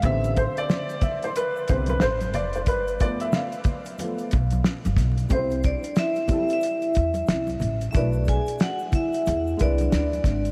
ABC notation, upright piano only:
X:1
M:4/4
L:1/16
Q:"Swing 16ths" 1/4=91
K:C
V:1 name="Upright piano"
e2 c d3 e c B2 c B c2 d c | B2 d e f8- f2 z2 | [G,CEc]2 z4 [G,CEA]2 z8 | [A,D^FB]2 z8 [^G,DEB]6 |]
V:2 name="Upright piano"
[D,G,B,C]6 z4 [D,G,B,C]2 z4 | z2 [F,A,B,]2 z4 [F,A,B,]2 z6 | z16 | z16 |]